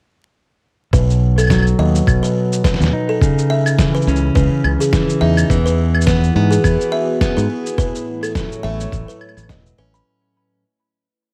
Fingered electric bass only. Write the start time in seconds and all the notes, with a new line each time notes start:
0.93 B1
1.79 D#2
2.07 B1
2.80 D#2
4.07 C#2
4.36 C#2
4.64 C#2
5.21 E2
5.50 E2
6.36 G#2
6.64 E2
7.37 G#2
8.64 A1
8.92 A1
9.37 A1
9.49 E1
9.79 A1